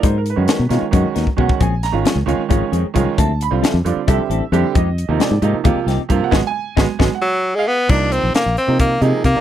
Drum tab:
CC |--------------|--------------|--------------|--------------|
HH |x-x-x-x-x-x---|x-x-x-x-x-x-x-|x-x-x-x-x-x-x-|x-x-x-x-x-x-x-|
SD |----o-o---o---|--o-o---------|----o---------|----o-----o---|
BD |o-------o--ooo|o-------o---o-|o-------o-----|o-------o---o-|

CC |--------------|x-------------|
HH |--------------|--x-x-x-x-x-x-|
SD |o---o-o-------|----o---------|
BD |o---o-o-------|o-------o---o-|